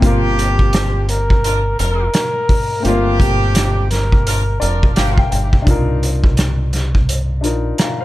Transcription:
0.00 1.75 G1 loud
0.00 2.78 A#3 medium
0.00 2.80 C4 medium
0.00 1.05 C4 loud
0.00 1.05 D4 loud
0.00 0.34 F4 medium
0.00 2.81 F4 medium
0.00 1.05 G4 loud
0.00 kick loud
0.00 closed hi-hat medium
0.06 2.83 A#4 medium
0.38 1.04 G4 medium
0.38 closed hi-hat medium
0.59 kick medium
0.73 cross-stick medium
0.73 snare loud
0.73 closed hi-hat loud
1.09 1.75 A#4 medium
1.09 closed hi-hat medium
1.30 kick medium
1.44 1.60 D4 medium
1.44 1.60 F4 medium
1.44 1.60 A#4 medium
1.44 closed hi-hat loud
1.79 2.07 F1 medium
1.79 2.07 D4 medium
1.79 2.07 F4 medium
1.79 2.07 A#4 loud
1.79 2.81 A#4 loud
1.79 closed hi-hat medium
2.14 cross-stick medium
2.14 snare loud
2.14 closed hi-hat medium
2.49 kick loud
2.49 open hi-hat medium
2.80 2.90 A3 medium
2.80 5.62 C4 medium
2.85 4.57 G1 loud
2.85 5.64 A#3 medium
2.85 3.87 C4 loud
2.85 3.87 D4 loud
2.85 3.16 F4 loud
2.85 5.63 F4 medium
2.85 3.87 G4 loud
2.85 5.65 A#4 medium
2.85 closed hi-hat medium
3.20 3.87 G4 medium
3.20 kick loud
3.20 closed hi-hat medium
3.55 cross-stick medium
3.55 snare loud
3.55 closed hi-hat loud
3.91 4.57 A#4 medium
3.91 snare soft
3.91 closed hi-hat medium
4.12 kick medium
4.26 4.42 D4 medium
4.26 4.42 F4 medium
4.26 4.42 A#4 loud
4.26 closed hi-hat loud
4.60 4.90 F1 medium
4.60 4.90 D4 medium
4.60 4.90 F4 medium
4.60 4.93 A#4 medium
4.60 4.90 A#4 medium
4.60 4.93 D5 medium
4.60 closed hi-hat medium
4.83 kick loud
4.95 5.25 G1 loud
4.95 5.24 C4 loud
4.95 5.24 D4 loud
4.95 5.24 G4 loud
4.95 5.16 F5 medium
4.95 cross-stick medium
4.95 snare loud
4.95 closed hi-hat medium
5.18 5.30 G5 medium
5.18 kick loud
5.31 5.60 G1 medium
5.31 5.64 G5 medium
5.31 closed hi-hat medium
5.53 kick loud
5.62 7.37 D4 medium
5.62 7.39 D#4 medium
5.67 7.44 C2 loud
5.67 7.40 F4 medium
5.67 7.42 A#4 medium
5.67 kick loud
5.67 closed hi-hat medium
6.03 closed hi-hat medium
6.24 kick medium
6.37 cross-stick medium
6.37 snare loud
6.37 closed hi-hat loud
6.73 snare soft
6.73 closed hi-hat medium
6.95 kick medium
7.09 closed hi-hat loud
7.41 7.72 A#1 medium
7.41 8.05 D4 medium
7.41 8.05 D#4 medium
7.41 8.05 F4 medium
7.41 closed hi-hat medium
7.45 7.80 A#4 medium
7.78 7.99 F5 medium
7.78 7.99 A#5 medium
7.78 cross-stick medium
7.78 snare loud
7.78 closed hi-hat medium
8.01 8.05 C5 medium
8.01 8.05 F5 medium

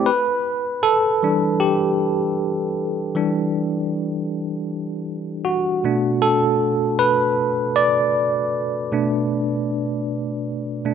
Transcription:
0.06 0.80 B4 medium
0.83 1.63 A4 medium
1.23 2.34 E3 soft
1.23 2.34 G3 soft
1.23 2.35 D4 medium
1.60 2.72 G4 medium
3.15 5.80 E3 soft
3.15 5.81 G3 soft
3.15 5.81 D4 medium
5.45 6.24 F#4 medium
5.84 6.35 B2 medium
5.84 6.36 A3 soft
5.84 6.36 D4 medium
6.22 6.95 A4 medium
6.99 7.72 B4 medium
7.76 8.88 D5 medium
8.92 9.43 B2 medium
8.92 9.43 A3 soft
8.92 9.44 D4 medium
10.85 10.94 B2 soft
10.85 10.94 A3 soft
10.85 10.94 D4 medium

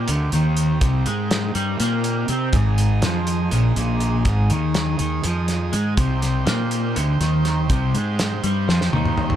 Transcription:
0.00 2.49 C4 soft
0.00 2.49 D#4 medium
0.00 2.49 G4 medium
0.00 2.51 A#4 medium
0.08 0.31 D2 medium
0.08 0.32 D3 medium
0.08 closed hi-hat medium
0.32 0.78 D#2 medium
0.32 0.81 D#3 loud
0.32 closed hi-hat medium
0.57 closed hi-hat medium
0.81 1.05 C2 medium
0.81 1.06 C3 medium
0.81 kick loud
0.81 closed hi-hat loud
1.06 1.53 G#2 medium
1.06 1.55 G#3 medium
1.06 closed hi-hat medium
1.31 snare loud
1.31 closed hi-hat medium
1.55 1.78 G2 medium
1.55 1.79 G3 medium
1.55 closed hi-hat medium
1.80 2.26 A#2 medium
1.80 2.29 A#3 medium
1.80 snare soft
1.80 closed hi-hat loud
2.04 closed hi-hat medium
2.28 2.52 C3 medium
2.28 2.53 C4 medium
2.28 closed hi-hat medium
2.53 2.99 G#1 medium
2.53 3.02 G#2 medium
2.53 5.94 D#3 medium
2.53 5.95 G#3 soft
2.53 5.94 G#4 medium
2.53 5.94 D#5 medium
2.53 kick loud
2.53 closed hi-hat medium
2.78 closed hi-hat medium
3.02 3.49 F2 medium
3.02 3.51 F3 medium
3.02 snare loud
3.02 closed hi-hat medium
3.27 closed hi-hat medium
3.51 3.75 A#1 medium
3.51 3.75 A#2 loud
3.51 closed hi-hat medium
3.76 4.23 A#1 medium
3.76 4.25 A#2 loud
3.76 closed hi-hat medium
4.00 closed hi-hat medium
4.25 4.49 G#1 medium
4.25 4.50 G#2 loud
4.25 kick medium
4.25 closed hi-hat medium
4.50 4.96 D#2 medium
4.50 4.98 D#3 medium
4.50 closed hi-hat medium
4.74 snare medium
4.74 closed hi-hat medium
4.99 5.23 D#2 medium
4.99 5.23 D#3 loud
4.99 closed hi-hat medium
5.24 5.70 F2 medium
5.24 5.73 F3 medium
5.24 closed hi-hat medium
5.48 snare soft
5.48 closed hi-hat medium
5.72 5.97 G#2 medium
5.72 5.97 G#3 medium
5.72 closed hi-hat medium
5.97 6.44 C2 medium
5.97 6.46 C3 medium
5.97 9.36 C4 medium
5.97 9.36 D#4 medium
5.97 9.36 G4 medium
5.97 9.36 C5 medium
5.97 kick loud
5.97 closed hi-hat medium
6.22 snare soft
6.22 closed hi-hat medium
6.46 6.93 A#2 loud
6.46 6.95 A#3 medium
6.46 snare loud
6.46 closed hi-hat medium
6.71 closed hi-hat medium
6.96 7.20 D2 medium
6.96 7.20 D3 medium
6.96 closed hi-hat medium
7.20 7.67 D#2 medium
7.20 7.69 D#3 loud
7.20 snare soft
7.20 closed hi-hat medium
7.45 snare soft
7.45 closed hi-hat medium
7.70 7.93 C2 medium
7.70 7.94 C3 loud
7.70 kick loud
7.70 closed hi-hat medium
7.94 8.40 G#2 medium
7.94 8.43 G#3 medium
7.94 closed hi-hat medium
8.19 snare medium
8.19 closed hi-hat medium
8.44 8.67 G2 medium
8.44 8.68 G3 loud
8.44 closed hi-hat medium
8.68 8.92 F2 medium
8.68 8.92 F3 medium
8.68 snare medium
8.81 snare medium
8.93 9.36 D#2 medium
8.93 9.36 D#3 loud
8.93 high tom medium
9.05 mid tom medium
9.18 mid tom medium
9.30 floor tom medium

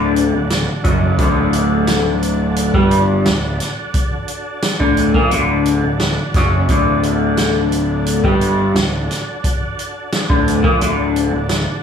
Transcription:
0.00 0.30 D1 medium
0.00 0.31 D2 loud
0.00 0.33 D3 loud
0.00 11.83 D4 medium
0.00 11.83 F#4 medium
0.00 11.83 A4 medium
0.16 closed hi-hat medium
0.33 0.67 D1 medium
0.33 0.61 D2 medium
0.50 snare loud
0.50 closed hi-hat medium
0.84 1.17 F#1 loud
0.84 1.18 F#2 loud
0.84 1.19 F#3 loud
0.84 kick loud
0.84 closed hi-hat medium
1.18 2.71 D1 loud
1.18 2.73 D2 loud
1.18 2.73 D3 loud
1.18 kick loud
1.18 closed hi-hat medium
1.53 closed hi-hat medium
1.87 snare loud
1.87 closed hi-hat loud
2.23 closed hi-hat medium
2.56 closed hi-hat loud
2.74 3.22 G1 loud
2.74 3.25 G2 loud
2.74 3.25 G3 loud
2.74 kick loud
2.91 closed hi-hat medium
3.26 3.59 D1 medium
3.26 3.54 D2 medium
3.26 snare loud
3.26 closed hi-hat medium
3.60 snare soft
3.60 closed hi-hat medium
3.94 kick loud
3.94 closed hi-hat loud
4.28 closed hi-hat medium
4.62 snare loud
4.62 closed hi-hat loud
4.79 5.13 D1 medium
4.79 5.14 D2 medium
4.79 5.14 D3 medium
4.79 kick medium
4.97 closed hi-hat medium
5.14 5.31 A#1 medium
5.14 5.31 A#2 medium
5.14 5.32 A#3 loud
5.14 kick loud
5.31 5.81 D1 medium
5.31 5.82 D2 medium
5.31 5.83 D3 loud
5.31 closed hi-hat medium
5.65 closed hi-hat medium
5.84 6.17 D1 medium
5.84 6.12 D2 medium
6.00 snare loud
6.00 closed hi-hat medium
6.34 6.67 F#1 loud
6.34 6.69 F#2 medium
6.34 6.70 F#3 loud
6.34 kick loud
6.34 snare soft
6.34 closed hi-hat medium
6.69 8.20 D1 loud
6.69 8.23 D2 medium
6.69 8.24 D3 loud
6.69 kick loud
6.69 closed hi-hat medium
7.03 closed hi-hat medium
7.37 snare loud
7.37 closed hi-hat loud
7.72 closed hi-hat medium
8.06 closed hi-hat medium
8.24 8.73 G1 medium
8.24 8.75 G2 medium
8.24 8.75 G3 loud
8.24 kick loud
8.41 closed hi-hat medium
8.75 9.08 D1 medium
8.75 9.03 D2 medium
8.75 snare loud
8.75 closed hi-hat medium
9.11 snare soft
9.11 closed hi-hat medium
9.44 kick loud
9.44 closed hi-hat loud
9.79 closed hi-hat medium
10.12 snare loud
10.12 closed hi-hat medium
10.29 10.62 D1 medium
10.29 10.63 D2 medium
10.29 10.63 D3 medium
10.29 kick loud
10.48 closed hi-hat medium
10.64 10.81 A#1 loud
10.64 10.81 A#2 medium
10.64 10.81 A#3 loud
10.64 kick loud
10.81 11.30 D1 medium
10.81 11.30 D2 medium
10.81 11.32 D3 medium
10.81 closed hi-hat medium
11.16 closed hi-hat medium
11.32 11.66 D1 medium
11.32 11.60 D2 medium
11.49 snare loud
11.49 closed hi-hat loud

